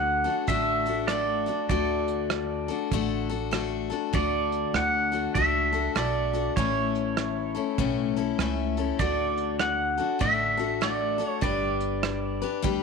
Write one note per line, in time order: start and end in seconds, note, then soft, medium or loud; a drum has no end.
0.00 0.25 D2 medium
0.00 0.25 D3 medium
0.00 0.48 A3 medium
0.00 0.26 D4 medium
0.00 0.24 F#4 medium
0.00 0.24 A4 medium
0.00 0.48 F#5 medium
0.24 0.48 D4 soft
0.24 0.48 F#4 soft
0.24 0.47 A4 soft
0.24 closed hi-hat medium
0.47 1.47 A1 medium
0.47 0.86 D3 medium
0.47 0.87 A3 medium
0.47 0.87 D4 medium
0.47 0.87 F#4 medium
0.47 0.85 A4 medium
0.47 1.11 E5 medium
0.47 kick medium
0.47 closed hi-hat medium
0.86 1.09 D4 soft
0.86 1.10 F#4 soft
0.86 1.09 A4 soft
0.86 closed hi-hat medium
1.07 1.47 A3 soft
1.07 1.48 D4 medium
1.07 1.47 F#4 medium
1.07 1.68 D5 medium
1.07 cross-stick medium
1.07 closed hi-hat medium
1.11 1.45 A4 medium
1.46 1.69 D4 soft
1.46 1.70 F#4 soft
1.46 1.69 A4 soft
1.46 closed hi-hat medium
1.69 2.68 D2 medium
1.69 2.69 D3 medium
1.69 2.93 A3 medium
1.69 2.69 D4 medium
1.69 2.69 F#4 medium
1.69 2.68 A4 medium
1.69 2.87 D5 medium
1.69 kick loud
1.69 closed hi-hat medium
2.08 closed hi-hat medium
2.30 cross-stick loud
2.30 closed hi-hat medium
2.68 2.92 D4 soft
2.68 2.92 F#4 medium
2.68 2.91 A4 medium
2.68 closed hi-hat medium
2.91 3.90 A1 medium
2.91 3.30 D3 medium
2.91 3.30 A3 medium
2.91 3.31 D4 medium
2.91 3.30 F#4 medium
2.91 3.28 A4 medium
2.91 kick medium
2.91 closed hi-hat medium
3.29 3.51 D4 soft
3.29 3.52 F#4 medium
3.29 3.52 A4 medium
3.29 closed hi-hat medium
3.51 3.90 A3 medium
3.51 3.91 D4 medium
3.51 3.90 F#4 medium
3.51 3.89 A4 medium
3.51 cross-stick medium
3.51 closed hi-hat medium
3.90 4.13 D4 soft
3.90 4.13 F#4 soft
3.90 4.13 A4 soft
3.90 closed hi-hat medium
4.13 4.63 D2 medium
4.13 5.12 D3 medium
4.13 5.35 A3 medium
4.13 5.12 D4 medium
4.13 5.12 F#4 medium
4.13 5.11 A4 medium
4.13 4.77 D5 medium
4.13 kick loud
4.13 closed hi-hat medium
4.52 closed hi-hat medium
4.74 5.25 D2 medium
4.74 5.34 F#5 medium
4.74 cross-stick medium
4.74 closed hi-hat medium
5.12 5.35 D4 soft
5.12 5.35 F#4 soft
5.12 5.35 A4 soft
5.12 closed hi-hat medium
5.35 5.87 C#2 medium
5.35 5.73 A3 medium
5.35 5.74 D4 medium
5.35 5.73 F#4 medium
5.35 5.71 A4 medium
5.35 5.91 E5 medium
5.35 kick medium
5.35 closed hi-hat medium
5.73 5.95 D4 soft
5.73 5.96 F#4 soft
5.73 5.95 A4 medium
5.73 closed hi-hat medium
5.95 6.47 B1 medium
5.95 6.34 A3 medium
5.95 6.34 D4 medium
5.95 6.34 F#4 medium
5.95 6.32 A4 medium
5.95 6.53 D5 medium
5.95 cross-stick medium
5.95 closed hi-hat medium
6.33 6.57 D4 soft
6.33 6.57 F#4 soft
6.33 6.56 A4 soft
6.33 closed hi-hat medium
6.56 7.55 A1 medium
6.56 7.55 A2 medium
6.56 7.56 E3 medium
6.56 7.57 A3 medium
6.56 7.56 C#4 medium
6.56 7.55 E4 medium
6.56 7.54 A4 medium
6.56 7.74 C#5 medium
6.56 kick loud
6.56 closed hi-hat medium
6.95 closed hi-hat medium
7.17 cross-stick loud
7.17 closed hi-hat medium
7.55 7.78 A3 soft
7.55 7.77 C#4 soft
7.55 7.78 E4 soft
7.55 7.78 A4 medium
7.55 closed hi-hat medium
7.78 8.30 B1 medium
7.78 8.16 A2 medium
7.78 8.16 E3 medium
7.78 8.17 A3 medium
7.78 8.17 C#4 medium
7.78 8.16 E4 medium
7.78 8.15 A4 medium
7.78 kick medium
7.78 closed hi-hat medium
8.16 8.39 A3 soft
8.16 8.39 C#4 soft
8.16 8.39 E4 medium
8.16 8.39 A4 medium
8.16 closed hi-hat medium
8.38 8.90 C#2 medium
8.38 8.78 A3 medium
8.38 8.78 C#4 medium
8.38 8.77 E4 medium
8.38 8.76 A4 medium
8.38 cross-stick medium
8.38 closed hi-hat medium
8.77 8.98 A3 soft
8.77 8.99 C#4 soft
8.77 9.00 E4 soft
8.77 9.00 A4 soft
8.77 closed hi-hat medium
8.99 9.98 D2 medium
8.99 9.98 D3 medium
8.99 9.98 A3 medium
8.99 10.00 D4 medium
8.99 9.98 F#4 medium
8.99 9.96 A4 medium
8.99 9.56 D5 medium
8.99 kick loud
8.99 closed hi-hat medium
9.37 closed hi-hat medium
9.59 10.21 F#5 medium
9.59 cross-stick loud
9.59 closed hi-hat medium
9.98 10.19 D4 soft
9.98 10.20 F#4 soft
9.98 10.20 A4 soft
9.98 closed hi-hat medium
10.19 11.19 A1 medium
10.19 10.58 D3 medium
10.19 10.59 A3 medium
10.19 10.59 D4 medium
10.19 10.58 F#4 medium
10.19 10.56 A4 medium
10.19 10.84 E5 medium
10.19 kick loud
10.19 closed hi-hat medium
10.57 10.81 D4 soft
10.57 10.82 F#4 soft
10.57 10.81 A4 soft
10.57 closed hi-hat medium
10.81 11.20 A3 medium
10.81 11.19 D4 medium
10.81 11.18 F#4 medium
10.81 11.17 A4 medium
10.81 11.27 D5 medium
10.81 cross-stick medium
10.81 closed hi-hat medium
11.18 11.40 D4 soft
11.18 11.42 F#4 soft
11.18 11.42 A4 soft
11.18 closed hi-hat medium
11.27 11.41 C#5 medium
11.41 12.41 G1 medium
11.41 12.41 G3 medium
11.41 12.41 D4 medium
11.41 12.42 G4 medium
11.41 12.40 B4 medium
11.41 12.60 D5 medium
11.41 kick loud
11.41 closed hi-hat medium
11.80 closed hi-hat medium
12.03 cross-stick loud
12.03 closed hi-hat medium
12.42 12.62 D4 soft
12.42 12.63 G4 medium
12.42 12.63 B4 medium
12.42 closed hi-hat medium
12.62 12.83 D2 medium
12.62 12.83 G3 medium
12.62 12.83 D4 medium
12.62 12.83 G4 medium
12.62 12.83 B4 medium
12.62 kick medium
12.62 closed hi-hat medium